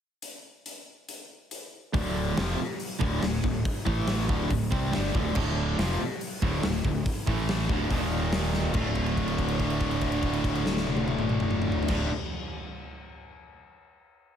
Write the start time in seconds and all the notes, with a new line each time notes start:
0.22 closed hi-hat
0.66 closed hi-hat
1.09 closed hi-hat
1.51 closed hi-hat
1.94 D1 D2 A2 D3, kick, open hi-hat
2.37 F1 F2 C3 F3, snare, open hi-hat
2.58 muted overdriven electric guitar stroke, muted fingered electric bass stroke, muted distorted electric guitar stroke
2.80 open hi-hat
3.01 D1 D2 A2 D3, kick
3.22 D1 D2 A2, snare, open hi-hat
3.44 D1 D2 A2, kick
3.65 kick, open hi-hat
3.85 A1 A2 E3 A3, kick
4.07 snare, open hi-hat
4.28 D1 D2 A2 D3, kick
4.50 D1 D2 A2, kick, open hi-hat
4.72 C2 C3 G3 C4, kick
4.91 G2, snare, open hi-hat
4.95 G1 G2 D3 G3
5.15 D1 D2 A2 D3, kick
5.35 D1 D2 A2 D3, kick, crash
5.79 F1 F2 C3 F3, snare, open hi-hat
5.99 muted overdriven electric guitar stroke, muted fingered electric bass stroke, muted distorted electric guitar stroke
6.21 open hi-hat
6.42 D1 D2 A2 D3, kick
6.63 D1 D2, snare, open hi-hat
6.68 A2
6.85 D1 D2 A2, kick
7.06 kick, open hi-hat
7.27 A1 A2 E3 A3, kick
7.31 A3
7.49 snare, open hi-hat
7.69 D1 D2, kick
7.73 D2 A2 D3
7.89 D#1 D#2, kick, open hi-hat
7.93 D#2 A#2 D#3
8.32 snare, open hi-hat
8.53 snare
8.63 floor tom
8.74 D1 D2 A2 A3, kick, crash
8.79 D3 F4
8.95 kick, crash
9.06 crash
9.17 kick, crash
9.28 crash
9.38 kick, crash
9.48 crash
9.59 kick, crash
9.70 crash
9.80 kick, crash
9.91 crash
10.01 kick, crash
10.12 crash
10.23 kick, crash
10.33 crash
10.44 kick, crash
10.55 crash
10.66 snare
10.77 snare
10.87 high tom
10.97 high tom
11.08 high tom
11.19 mid tom
11.29 mid tom
11.40 mid tom
11.51 mid tom
11.62 mid tom
11.72 floor tom
11.83 floor tom
11.88 D1 D2 A3, kick, snare, crash
11.93 A2 D3 F4